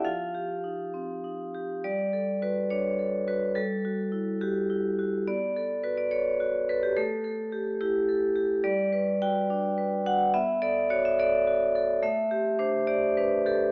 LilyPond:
\new Staff \with { instrumentName = "Vibraphone" } { \time 6/8 \key g \lydian \tempo 4. = 70 << { <f' f''>2~ <f' f''>8 r8 | d''4 b'8 cis''4 b'8 | a'4. g'4. | d''4 b'16 d''16 cis''4 b'16 g'16 |
a'4. g'4. | d''4 g''4. fis''8 | e''8 d''8 cis''16 e''16 d''4. | e''4 c''8 d''8 b'8 a'8 | } \\ { f8 g'8 ees'8 c'8 ees'8 g'8 | g8 a'8 fis'8 d'8 a'8 fis'8 | g8 fis'8 e'8 fis'8 e'8 fis'8 | b8 a'8 fis'8 a'8 fis'8 a'8 |
a8 a'8 g'8 e'8 a'8 g'8 | g8 b'8 fis'8 d'8 b'8 fis'8 | b8 a'8 fis'8 a'8 fis'8 a'8 | a8 g'8 d'8 g'8 d'8 g'8 | } >> }